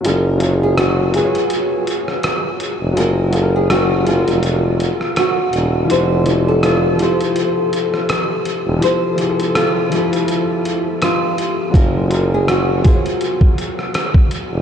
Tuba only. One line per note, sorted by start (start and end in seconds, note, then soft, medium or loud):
0.04 1.31 F#1 loud
2.81 2.95 F1 medium
2.97 4.23 F#1 loud
4.28 4.91 F1 medium
5.53 5.84 E1 medium
5.90 7.16 F1 medium
8.66 8.80 E1 medium
11.74 13.01 F#1 loud
14.52 14.62 F1 medium